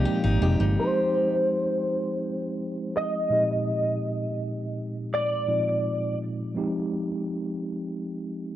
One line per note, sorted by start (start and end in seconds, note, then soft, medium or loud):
0.00 0.85 A#2 medium
0.00 0.30 F3 medium
0.00 0.30 G#3 medium
0.00 0.30 C4 medium
0.00 0.23 D#4 medium
0.00 0.30 D#4 medium
0.00 0.30 G4 loud
0.05 0.41 G4 medium
0.24 0.39 G#1 medium
0.24 0.59 D#4 medium
0.41 0.57 F1 loud
0.41 0.71 F3 medium
0.41 0.72 G#3 medium
0.41 0.72 C4 medium
0.41 0.72 D#4 medium
0.41 1.35 G4 medium
0.41 0.72 G4 medium
0.60 0.75 G1 loud
0.60 1.35 D#4 medium
0.76 3.26 F3 medium
0.76 3.26 G#3 medium
0.76 3.27 C4 medium
0.76 3.27 D#4 medium
0.76 3.27 G4 medium
0.76 2.97 C5 medium
2.97 5.09 D#5 loud
3.29 5.43 A#2 medium
3.29 5.43 F3 medium
3.29 5.43 G#3 medium
3.29 5.44 C4 medium
3.29 5.44 D#4 medium
3.29 5.44 G4 medium
5.14 6.17 D5 medium
5.47 6.56 A#2 soft
5.47 6.54 F3 soft
5.47 6.54 G#3 soft
5.47 6.55 C4 soft
5.47 6.56 D#4 soft
5.47 6.56 F4 medium
6.55 8.56 F3 medium
6.55 8.56 G#3 medium
6.55 8.56 C4 medium
6.55 8.56 D#4 medium
6.55 8.56 G4 medium